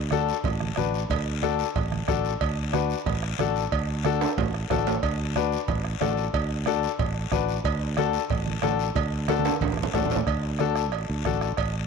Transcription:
Already playing: fretless electric bass D2
0.11 upright piano D4 F#4 A4, bombo rim, high conga, short guiro
0.29 short guiro
0.44 fretless electric bass A1, bombo low, cowbell, low conga, long guiro
0.60 bombo rim, high conga
0.76 fretless electric bass A1, upright piano D4 F#4 B4, bombo rim, high conga, short guiro
0.94 short guiro
1.10 fretless electric bass D2, bombo low, cowbell, low conga, long guiro
1.42 upright piano D4 F#4 A4, bombo rim, high conga, short guiro
1.59 short guiro
1.75 fretless electric bass A1, bombo low, cowbell, low conga, long guiro
1.92 bombo rim, high conga
2.08 fretless electric bass A1, upright piano D4 F#4 A4, bombo low, bombo rim, high conga, low conga, short guiro
2.25 short guiro
2.41 fretless electric bass D2, bombo low, cowbell, long guiro
2.73 upright piano D4 F#4 B4, bombo rim, high conga, short guiro
2.90 short guiro
3.06 fretless electric bass A1, bombo low, cowbell, low conga, long guiro
3.23 bombo rim
3.39 fretless electric bass A1, upright piano D4 F#4 A4, bombo rim, high conga, short guiro
3.56 short guiro
3.72 fretless electric bass D2, bombo low, cowbell, long guiro
4.04 upright piano D4 F#4 A4, bombo rim, high conga, short guiro
4.21 high timbale, short guiro
4.37 fretless electric bass A1, bombo low, cowbell, low conga, low timbale, long guiro
4.54 bombo rim
4.70 fretless electric bass A1, upright piano D4 F#4 A4, bombo low, bombo rim, high conga, low timbale, short guiro
4.87 low timbale, short guiro
5.03 fretless electric bass D2, bombo low, cowbell, long guiro
5.36 upright piano D4 F#4 B4, bombo rim, high conga, short guiro
5.52 short guiro
5.68 fretless electric bass A1, bombo low, cowbell, low conga, long guiro
5.84 bombo rim
6.00 fretless electric bass A1, upright piano D4 F#4 A4, bombo rim, high conga, low timbale, short guiro
6.17 short guiro
6.33 fretless electric bass D2, bombo low, cowbell, long guiro
6.66 upright piano D4 F#4 A4, bombo rim, high conga, short guiro
6.83 short guiro
6.99 fretless electric bass A1, bombo low, cowbell, low conga, long guiro
7.31 fretless electric bass A1, upright piano D4 F#4 B4, bombo low, bombo rim, high conga, short guiro
7.49 short guiro
7.64 fretless electric bass D2, bombo low, cowbell, long guiro
7.97 upright piano D4 F#4 A4, bombo rim, high conga, short guiro
8.13 short guiro
8.30 fretless electric bass A1, bombo low, cowbell, low conga, long guiro
8.46 high conga
8.62 fretless electric bass A1, upright piano D4 F#4 A4, bombo rim, high conga, low timbale, short guiro
8.79 short guiro
8.95 fretless electric bass D2, bombo low, cowbell, low conga, long guiro
9.28 upright piano D4 F#4 A4, bombo rim, high conga, high timbale, short guiro
9.39 high conga
9.45 high timbale, short guiro
9.51 high conga
9.61 fretless electric bass A1, bombo low, cowbell, high conga, high timbale, long guiro
9.72 low conga
9.77 bombo rim
9.83 low conga
9.94 fretless electric bass A1, upright piano D4 F#4 A4, bombo low, bombo rim, low conga, low timbale, short guiro
10.05 low conga
10.10 low timbale, short guiro
10.16 low conga
10.27 fretless electric bass D2, bombo low, bombo rim, cowbell, high conga, long guiro
10.59 upright piano D4 F#4 A4, bombo rim, high conga, short guiro
10.75 bombo rim, short guiro
10.92 fretless electric bass A1, bombo rim, cowbell, high conga, long guiro
11.09 fretless electric bass D2
11.25 fretless electric bass A1, upright piano D4 F#4 A4, bombo low, bombo rim, high conga, short guiro
11.41 bombo rim, short guiro
11.57 fretless electric bass A1, bombo low, bombo rim, cowbell, high conga, long guiro

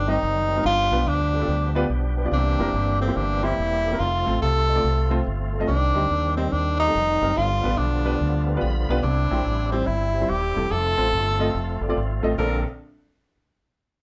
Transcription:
Already playing: fingered electric bass G1, tonewheel organ D#3 G3 C4, tenor saxophone D4
0.07 grand piano G3 C4 D#4 G4 D#5, tenor saxophone D#4
0.22 fingered electric bass F#1
0.49 grand piano G4 C5
0.56 grand piano G3 C4 D#4 G4 A#4
0.63 fingered electric bass G1, grand piano G2, tonewheel organ F3 G3 A#3 D4 G4, tenor saxophone F4
0.68 tonewheel organ B3
0.91 fingered electric bass B1, grand piano B3 D4 F4 G4 B4
1.07 fingered electric bass D2, tenor saxophone D4
1.33 grand piano G4 A4
1.40 grand piano B3 D4 F4 G4 A4
1.48 fingered electric bass D2
1.75 grand piano B3 D4 F4 G4 B4
1.90 fingered electric bass B1
2.17 grand piano G4 B4
2.24 grand piano B3 D4 F4 G4 D5
2.31 fingered electric bass C2, grand piano C3, tonewheel organ E3 G3 A#3 C4 G4, tenor saxophone D4
2.58 fingered electric bass F1, grand piano A#3 C4 E4 G4 A#4
2.74 fingered electric bass G1
3.00 tenor saxophone C4, grand piano G4 A4
3.07 grand piano A#3 C4 E4 G4 C5
3.16 fingered electric bass G1, tenor saxophone D4
3.42 grand piano A#3 C4 E4 G4 C5, tenor saxophone E4
3.58 fingered electric bass E1
3.84 grand piano G4 A4
3.92 grand piano A#3 C4 E4 G4 A#4
3.99 fingered electric bass F1, tonewheel organ G3 C4 F4, tenor saxophone F4
4.05 tonewheel organ A3
4.26 fingered electric bass A1, grand piano A3 C4 F4 A4 C5
4.42 fingered electric bass C2, tenor saxophone A4
4.68 grand piano A4 D#5
4.75 grand piano A3 C4 F4 A4 D5
4.84 fingered electric bass C2
5.10 grand piano A3 C4 F4 A4 C5
5.27 fingered electric bass G1
5.53 grand piano A4 C5
5.59 grand piano A3 C4 F4 A4 D#5
5.67 fingered electric bass C2, grand piano C3, tonewheel organ G3 C4 D4, tenor saxophone D4
5.72 tonewheel organ D#3
5.95 fingered electric bass D2, grand piano G3 C4 D#4 G4 C5
6.11 fingered electric bass D#2
6.37 grand piano G3 C4 D#4 G4 C5, tenor saxophone C4
6.52 fingered electric bass D#2, tenor saxophone D4
6.79 tenor saxophone D#4, grand piano G4 C5
6.87 grand piano G3 C4 D#4 G4 A4
6.95 fingered electric bass F1
7.22 fingered electric bass F#1, grand piano G3 C4 D#4 G4 A#4
7.36 fingered electric bass G1, grand piano G2, tonewheel organ D3 F3 G3 B3 E4, tenor saxophone F4
7.41 tonewheel organ F4
7.63 fingered electric bass A1, grand piano B3 D4 F4 G4 B4
7.77 fingered electric bass B1, tenor saxophone D4
8.05 grand piano B3 D4 F4 G4 B4
8.21 fingered electric bass D2
8.47 grand piano G4 B4
8.55 grand piano B3 D4 F4 G4 B4
8.61 fingered electric bass A#1, tonewheel organ B5
8.89 fingered electric bass B1, grand piano B3 D4 F4 G4 B4
9.02 fingered electric bass C2, grand piano C3, tonewheel organ G3 C4 E4, tenor saxophone D4
9.31 fingered electric bass A#1, grand piano G3 C4 E4 G4 C5
9.46 fingered electric bass A1
9.72 grand piano G3 C4 E4 G4 C5, tenor saxophone C4
9.87 fingered electric bass G1, tenor saxophone E4
10.14 grand piano G4 C5
10.21 grand piano G3 C4 E4 G4 C5
10.29 fingered electric bass D#1, tenor saxophone G4
10.56 fingered electric bass E1, grand piano G3 C4 E4 G4 A4
10.71 fingered electric bass F1, tonewheel organ A3 C4 E4, tenor saxophone A4
10.76 tonewheel organ F4
10.97 fingered electric bass A1, grand piano A3 C4 F4 A4 C5
11.12 fingered electric bass G1
11.39 grand piano A3 C4 F4 A4 D#5
11.54 fingered electric bass F1
11.81 fingered electric bass G1, grand piano A4 D5
11.89 grand piano A3 C4 F4 A4 D5
11.96 fingered electric bass G#1
12.23 fingered electric bass A1, grand piano A3 C4 F4 A4 D#5
12.38 fingered electric bass A#1, grand piano A#1 A#3 C4 D4 A4, tonewheel organ D3 A#3 C4 A4, tenor saxophone A#4

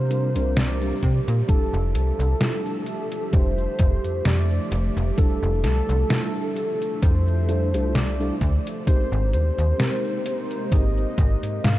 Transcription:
Already playing: fm bass C3, ambient pad C3 F3 A#3 G4 E5, soft synth lead C5
0.09 fm electric piano G3 C4 D4 F4 A#4, closed hi-hat
0.34 fm bass C2, fm electric piano G3 C4 D4 F4 A#4, closed hi-hat, cabasa
0.56 soft synth lead D5, snare, closed hi-hat, cabasa
0.81 fm electric piano G3 C4 D4 F4 A#4, closed hi-hat, cabasa
1.03 fm bass C3, kick, closed hi-hat
1.28 fm bass A#2, closed hi-hat, cabasa
1.47 fm bass F1, ambient pad D3 A3, fm electric piano G3 D4 E4 F4 A4, soft synth lead A4, kick, closed hi-hat, cabasa
1.73 fm bass F1, cabasa
1.94 fm bass C2, soft synth lead A4, closed hi-hat
2.19 fm bass C2, closed hi-hat, cabasa
2.40 fm electric piano G3 D4 E4 F4 A4, snare, closed hi-hat, cabasa
2.66 cabasa
2.86 closed hi-hat
3.12 closed hi-hat, cabasa
3.31 fm bass F1, fm electric piano G3 D4 E4 F4 G4, soft synth lead C5, kick, closed hi-hat, cabasa
3.58 cabasa
3.79 fm bass F1, kick, closed hi-hat
4.04 fm bass F2, closed hi-hat, cabasa
4.25 fm bass F2, soft synth lead D5, snare, closed hi-hat, cabasa
4.51 cabasa
4.72 fm bass F1, closed hi-hat
4.97 fm bass F1, closed hi-hat, cabasa
5.17 fm electric piano G3 D4 E4 F4 A4, soft synth lead A4, kick, closed hi-hat, cabasa
5.43 fm bass F1, cabasa
5.64 fm bass C2, soft synth lead A4, snare, closed hi-hat
5.89 fm bass C2, closed hi-hat, cabasa
6.08 fm electric piano G3 D4 E4 F4 A4, snare, closed hi-hat, cabasa
6.36 cabasa
6.57 closed hi-hat
6.82 closed hi-hat, cabasa
7.02 fm bass F2, soft synth lead C5, kick, closed hi-hat, cabasa
7.28 cabasa
7.48 fm electric piano G3 D4 E4 F4 A4, closed hi-hat
7.73 fm bass C2, fm electric piano G3 D4 E4 F4 A4, closed hi-hat, cabasa
7.95 soft synth lead D5, snare, closed hi-hat, cabasa
8.19 fm electric piano G3 D4 E4 F4 A4, cabasa
8.41 fm bass D2, kick, closed hi-hat
8.67 closed hi-hat, cabasa
8.86 fm bass G#1, ambient pad C3 G#3 A#3 D#4 G4, fm electric piano G#3 C4 D#4 G4 A#4, soft synth lead C5, kick, closed hi-hat, cabasa
9.12 fm bass G#1, cabasa
9.33 fm bass D#2, soft synth lead C5, closed hi-hat
9.58 fm bass D#2, closed hi-hat, cabasa
9.78 fm electric piano G#3 C4 D#4 G4 A#4, snare, closed hi-hat, cabasa
10.05 cabasa
10.26 closed hi-hat
10.51 closed hi-hat, cabasa
10.70 fm bass G#1, fm electric piano G#3 C4 D#4 G4 A#4, soft synth lead D#5, kick, closed hi-hat, cabasa
10.97 cabasa
11.18 fm bass G#1, kick, closed hi-hat
11.43 fm bass G#2, closed hi-hat, cabasa
11.64 fm bass G#2, soft synth lead F5, snare, closed hi-hat, cabasa

